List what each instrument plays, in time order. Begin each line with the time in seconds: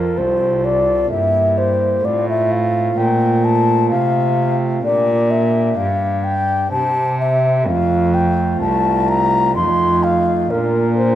Already playing: pipe organ F2 C4 F4 A4, cello F2, flute A#4
0.17 cello C2, pipe organ C2, flute C5
0.65 flute D5
1.08 cello G2, pipe organ A#3 E4 G4, flute E5
1.12 pipe organ G2
1.58 flute C5
2.00 pipe organ A3 C4 F4
2.04 pipe organ A2, cello A2, flute D5
2.29 flute E5
2.51 flute F5
2.97 pipe organ A#2, cello A#2, flute G5
3.45 flute A5
3.91 cello C3, pipe organ C3, flute F5
4.81 pipe organ A#2 D4 G4, cello A#2, flute D5
5.31 flute E5
5.77 pipe organ G2, cello G2, flute F5
6.24 flute G5
6.69 pipe organ C3 C4 G4, flute A5
6.73 cello C3
7.20 flute E5
7.63 pipe organ A3 C4 F4
7.67 pipe organ F2, cello F2, flute F5
8.14 flute G5
8.61 pipe organ C2, cello C2, flute A5
9.09 flute A#5
9.52 cello F2, pipe organ A3 D#4 F4, flute C6
9.56 pipe organ F2
10.03 flute F5
10.46 cello A#2, pipe organ A#3 D4 F4
10.50 pipe organ A#2, flute A#4
10.97 flute C5